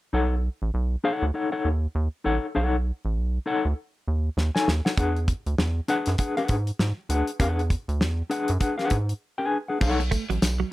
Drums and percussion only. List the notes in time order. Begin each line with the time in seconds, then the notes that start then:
4.38 snare
4.56 snare
4.68 snare
4.86 snare
4.97 kick, closed hi-hat
5.16 closed hi-hat
5.28 kick, closed hi-hat
5.47 closed hi-hat
5.58 snare
5.88 closed hi-hat
6.06 snare, closed hi-hat
6.18 kick, closed hi-hat
6.37 closed hi-hat
6.48 kick, closed hi-hat
6.67 closed hi-hat
6.79 snare
7.10 closed hi-hat
7.27 closed hi-hat
7.40 kick, closed hi-hat
7.59 closed hi-hat
7.70 kick, closed hi-hat
7.89 closed hi-hat
8.01 snare
8.31 closed hi-hat
8.48 closed hi-hat
8.61 kick, closed hi-hat
8.79 snare, closed hi-hat
8.90 kick, closed hi-hat
9.09 closed hi-hat
9.81 kick, crash, tambourine
10.00 closed hi-hat
10.12 kick, closed hi-hat, tambourine
10.30 closed hi-hat
10.42 snare, closed hi-hat, tambourine